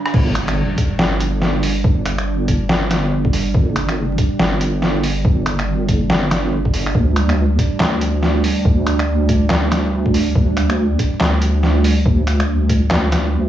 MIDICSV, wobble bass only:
0, 0, Header, 1, 2, 480
1, 0, Start_track
1, 0, Tempo, 425532
1, 159, Time_signature, 4, 2, 24, 8
1, 15214, End_track
2, 0, Start_track
2, 0, Title_t, "Wobble bass"
2, 0, Program_c, 0, 39
2, 157, Note_on_c, 0, 31, 94
2, 863, Note_off_c, 0, 31, 0
2, 1116, Note_on_c, 0, 31, 99
2, 2062, Note_off_c, 0, 31, 0
2, 2078, Note_on_c, 0, 31, 94
2, 3023, Note_off_c, 0, 31, 0
2, 3037, Note_on_c, 0, 31, 95
2, 3983, Note_off_c, 0, 31, 0
2, 3998, Note_on_c, 0, 31, 93
2, 4703, Note_off_c, 0, 31, 0
2, 4959, Note_on_c, 0, 31, 100
2, 5904, Note_off_c, 0, 31, 0
2, 5918, Note_on_c, 0, 31, 97
2, 6863, Note_off_c, 0, 31, 0
2, 6878, Note_on_c, 0, 31, 96
2, 7823, Note_off_c, 0, 31, 0
2, 7837, Note_on_c, 0, 38, 94
2, 8543, Note_off_c, 0, 38, 0
2, 8797, Note_on_c, 0, 38, 98
2, 9743, Note_off_c, 0, 38, 0
2, 9758, Note_on_c, 0, 38, 95
2, 10703, Note_off_c, 0, 38, 0
2, 10718, Note_on_c, 0, 38, 97
2, 11663, Note_off_c, 0, 38, 0
2, 11678, Note_on_c, 0, 38, 93
2, 12383, Note_off_c, 0, 38, 0
2, 12638, Note_on_c, 0, 38, 94
2, 13583, Note_off_c, 0, 38, 0
2, 13598, Note_on_c, 0, 38, 96
2, 14543, Note_off_c, 0, 38, 0
2, 14559, Note_on_c, 0, 38, 99
2, 15214, Note_off_c, 0, 38, 0
2, 15214, End_track
0, 0, End_of_file